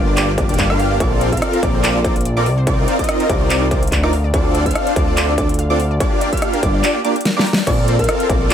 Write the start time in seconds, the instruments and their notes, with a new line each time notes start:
Already playing: analog synth bass G1, supersaw synth A#3 D4 F4 G4 D5, synth pluck D6
0.07 synth arpeggio sound D5
0.17 supersaw synth A#3 D4 F4 G4 D5, synth arpeggio sound F4, synth pluck D6, clap, closed hi-hat
0.28 synth arpeggio sound F4
0.38 supersaw synth A#3 D4 F4 G4 D5, synth arpeggio sound D5, synth pluck D6, kick, closed hi-hat
0.49 analog synth bass D1, supersaw synth A#3 D4 F4 G4 D5, synth arpeggio sound F4, synth pluck D6, closed hi-hat
0.54 closed hi-hat
0.59 analog synth bass G1, synth arpeggio sound F5, kick, clap, closed hi-hat
0.70 supersaw synth A#3 D4 F4 G4 F5, synth arpeggio sound A#4, synth pluck F6, cross-stick
0.79 synth arpeggio sound F5, open hi-hat
0.91 synth arpeggio sound D5
1.00 analog synth bass A#1, supersaw synth C4 F4 A4 A#4 D5, synth arpeggio sound F4, synth pluck D6, kick, closed hi-hat
1.12 synth arpeggio sound F4
1.21 synth arpeggio sound C5, closed hi-hat
1.32 supersaw synth C4 F4 A4 A#4 F5, synth arpeggio sound F4, synth pluck F6, kick, closed hi-hat
1.37 closed hi-hat
1.42 synth arpeggio sound D5, cross-stick, closed hi-hat
1.53 synth arpeggio sound A#4, closed hi-hat
1.63 analog synth bass A#1, supersaw synth A4 A#4 D5, synth arpeggio sound D5, synth pluck D6, kick, closed hi-hat
1.74 synth arpeggio sound C5
1.84 supersaw synth C4 F4 A4 A#4 D5, synth arpeggio sound F4, synth pluck D6, clap, closed hi-hat
1.95 synth arpeggio sound F4
2.04 supersaw synth C4 F4 A4 A#4 D5, synth arpeggio sound C5, synth pluck D6, kick, closed hi-hat
2.16 synth arpeggio sound F4, closed hi-hat
2.21 closed hi-hat
2.25 synth arpeggio sound D5, closed hi-hat
2.37 supersaw synth C4 F4 A4 A#4 D5, synth arpeggio sound A#4, synth pluck D6
2.46 analog synth bass C2, synth arpeggio sound D5, open hi-hat
2.58 synth arpeggio sound C5
2.67 supersaw synth C4 D#4 F4 A#4 D5, synth arpeggio sound F4, synth pluck D6, kick, closed hi-hat
2.78 synth arpeggio sound F4
2.88 synth arpeggio sound C5, closed hi-hat
2.99 supersaw synth C4 D#4 F4 A#4 D#5, synth arpeggio sound F4, synth pluck D#6, kick, closed hi-hat
3.04 closed hi-hat
3.09 synth arpeggio sound D5, cross-stick, closed hi-hat
3.20 synth arpeggio sound A#4, closed hi-hat
3.29 analog synth bass C2, supersaw synth C4 A#4, synth arpeggio sound D5, synth pluck D6, kick, closed hi-hat
3.41 synth arpeggio sound C5
3.50 supersaw synth C4 D#4 F4 A#4 D5, synth arpeggio sound F4, synth pluck D6, clap, closed hi-hat
3.62 synth arpeggio sound F4
3.71 supersaw synth C4 D#4 F4 A#4 D5, synth arpeggio sound C5, synth pluck D6, kick, closed hi-hat
3.83 synth arpeggio sound F4, closed hi-hat
3.87 closed hi-hat
3.92 analog synth bass D2, synth arpeggio sound D5, kick, clap, closed hi-hat
4.03 supersaw synth C4 D#4 F4 A#4 D5, synth arpeggio sound A#4, synth pluck D6, cross-stick
4.13 synth arpeggio sound F5, open hi-hat
4.24 synth arpeggio sound D5
4.34 analog synth bass D2, supersaw synth C4 D4 F4 A4 D5, synth arpeggio sound F4, synth pluck D6, kick, closed hi-hat
4.45 synth arpeggio sound F4
4.55 synth arpeggio sound D5, closed hi-hat
4.66 supersaw synth C4 D4 F4 A4, synth arpeggio sound F4, synth pluck F6, kick, closed hi-hat
4.71 closed hi-hat
4.75 synth arpeggio sound F5, cross-stick, closed hi-hat
4.87 synth arpeggio sound C5, closed hi-hat
4.96 analog synth bass D2, supersaw synth C4 D4 F4 A4 D5, synth arpeggio sound F5, synth pluck D6, kick, closed hi-hat
5.08 synth arpeggio sound D5
5.17 supersaw synth C4 D4 F4 A4 D5, synth arpeggio sound F4, synth pluck D6, clap, closed hi-hat
5.28 synth arpeggio sound F4
5.38 supersaw synth C4 D4 F4 A4 D5, synth arpeggio sound D5, synth pluck D6, kick, closed hi-hat
5.49 synth arpeggio sound F4, closed hi-hat
5.54 closed hi-hat
5.59 synth arpeggio sound F5, closed hi-hat
5.70 supersaw synth C4 D4 F4 A4 D5, synth arpeggio sound C5, synth pluck D6
5.80 synth arpeggio sound F5, open hi-hat
5.91 synth arpeggio sound D5
6.00 supersaw synth A#3 D4 F4 G4 D5, synth arpeggio sound F4, synth pluck D6, kick, closed hi-hat
6.12 synth arpeggio sound F4
6.21 synth arpeggio sound D5, closed hi-hat
6.33 supersaw synth A#3 D4 F4 G4 F5, synth arpeggio sound F4, synth pluck F6, kick, closed hi-hat
6.37 closed hi-hat
6.42 synth arpeggio sound F5, cross-stick, closed hi-hat
6.53 synth arpeggio sound A#4, closed hi-hat
6.63 analog synth bass G1, supersaw synth A#3 D4 G4 D5, synth arpeggio sound F5, synth pluck D6, kick, closed hi-hat
6.74 synth arpeggio sound D5
6.84 supersaw synth A#3 D4 F4 G4 D5, synth arpeggio sound F4, synth pluck D6, clap, closed hi-hat
6.95 synth arpeggio sound F4
7.04 supersaw synth A#3 D4 F4 G4 D5, synth arpeggio sound A#5, synth pluck D6, closed hi-hat
7.16 synth arpeggio sound G5, closed hi-hat
7.21 closed hi-hat
7.25 synth arpeggio sound A#4, snare, closed hi-hat
7.37 supersaw synth A#3 D4 F4 G4 D5, synth arpeggio sound A#4, synth pluck D6, snare
7.46 synth arpeggio sound A#5, open hi-hat
7.53 snare
7.57 synth arpeggio sound D5
7.67 analog synth bass A#1, supersaw synth C4 F4 A4 A#4 D5, synth arpeggio sound F4, kalimba D5, synth pluck D6, kick, closed hi-hat, crash
7.78 synth arpeggio sound F4
7.88 synth arpeggio sound C5, closed hi-hat
7.99 synth arpeggio sound F4, supersaw synth A4 A#4, kalimba A#4, synth pluck F6, kick, closed hi-hat
8.04 closed hi-hat
8.09 synth arpeggio sound D5, cross-stick, closed hi-hat
8.20 synth arpeggio sound A#4, closed hi-hat
8.29 analog synth bass A#1, supersaw synth C4 F4 A4 A#4 D5, synth arpeggio sound D5, synth pluck D6, kick, closed hi-hat
8.41 synth arpeggio sound C5
8.50 supersaw synth C4 F4 A4 A#4 D5, synth arpeggio sound F4, synth pluck D6, clap, closed hi-hat